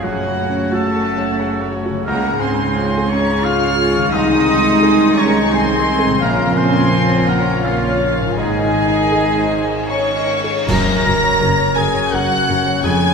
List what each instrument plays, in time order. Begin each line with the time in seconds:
Already playing: harp F#2 F#4, french horn section C#3, violin section C#4
0.00 oboe F#4, harp A4, violin section F#5
0.04 double bass section F#1, grand piano F#2, viola section C#3 A3, cello section F#3, violin section F#4, french horn section F#4, flute section C#5
0.27 grand piano C#3
0.49 grand piano C#4
0.72 cello section A3, grand piano F#4, oboe A4, flute section F#5, violin section A5
0.95 grand piano A4
1.18 grand piano C#5
1.40 grand piano F#5
1.61 grand piano C#5
1.85 grand piano F#4
1.90 harp C#3
1.94 harp G#3
1.99 harp G#4
2.06 double bass section C#2, grand piano C#2, french horn section C#3 G#4, viola section G#3, cello section A#3, violin section C#4 G#4 A#5, oboe A#4, flute section F#5
2.31 grand piano G#2
2.40 cello section C4, oboe C5, flute section G#5, violin section C6
2.53 grand piano C#3
2.76 grand piano F4
2.98 grand piano G#4
3.09 cello section C#4, oboe C#5, flute section A#5, violin section C#6
3.20 grand piano C#5
3.43 cello section F4, oboe F5, grand piano F5, flute section C#6, violin section F6
3.66 grand piano C#5
3.90 grand piano F4
3.95 harp D#3
4.00 harp D#4
4.04 harp G#4
4.12 grand piano C2, double bass section C2, french horn section D#3, viola section D#3 G#3, cello section D#4, violin section D#4 D#6, oboe D#5, flute section C6
4.37 grand piano C3
4.59 grand piano D#4
4.83 grand piano G#4
5.06 grand piano D#4
5.18 cello section C#4, oboe C#5, flute section A#5, violin section C#6
5.29 grand piano D#5
5.52 cello section C4, oboe C5, grand piano G#5, flute section G#5, violin section C6
5.76 grand piano D#5
5.99 grand piano G#4
6.05 harp A#2
6.09 harp C#3
6.14 harp F3
6.18 harp A#4, oboe A#4, flute section F5
6.22 grand piano A#1, double bass section A#1, french horn section F3 A#4, viola section F3 A#3, cello section A#3, violin section C#4 F4 A#5
6.47 grand piano F2
6.55 cello section C4, oboe C5, flute section G#5, violin section C6
6.68 grand piano C#3
6.93 grand piano F4
7.17 grand piano A#4
7.28 cello section A#3, oboe A#4, flute section F#5, violin section A#5
7.40 grand piano C#5
7.63 cello section F3, french horn section F3 A#4, oboe F4, flute section C#5, grand piano F5, violin section F5
7.89 grand piano C#5
8.12 grand piano F4
8.19 harp G#2
8.24 harp D#4
8.28 harp G#4
8.33 harp D#5, violin section G#5
8.37 double bass section G#1, grand piano G#2, french horn section D#3 D#5, viola section D#3 D#4, cello section G#3, violin section D#4 G#4, oboe G#4, flute section D#5
8.63 grand piano D#3
8.87 grand piano D#4
9.12 grand piano G#4
9.38 grand piano C5
9.64 grand piano D#5
9.88 clarinet C#4, violin section C#5 C#6, flute section C#5, grand piano G#5
10.17 grand piano D#5
10.44 grand piano G#4
10.67 double bass section F#1, harp F#2, cello section F#2, grand piano F#2, french horn section F#3 C#4, viola section C#4 F#4, clarinet A#4, violin section A#5 A#6, flute section A#5, concert bass drum, crash
10.88 grand piano C#5
11.05 double bass section F#1, cello section F#2, harp C#3, viola section C#4 F#4, grand piano A#4
11.24 grand piano C#5
11.40 double bass section F#1, cello section F#2, harp A#3, viola section C#4 F#4, grand piano A#4
11.58 grand piano C#5
11.75 double bass section F#1, cello section F#2, harp C#3, viola section C#4 F#4, clarinet G#4, grand piano A#4, flute section G#5, violin section G#5 G#6
11.95 grand piano C#5
12.11 double bass section F#1, cello section F#2, viola section C#4 F#4, clarinet F#4, harp A#4, grand piano A#4, violin section F#5 F#6, flute section F#5
12.32 grand piano C#5
12.48 double bass section F#1, cello section F#2, harp C#3, viola section C#4 F#4, grand piano A#4
12.66 grand piano C#5
12.83 double bass section F1, cello section F2, harp F2, grand piano F2, french horn section F3, viola section C#4 G#4, clarinet G#4, flute section G#5, violin section G#5 G#6
13.03 grand piano C#5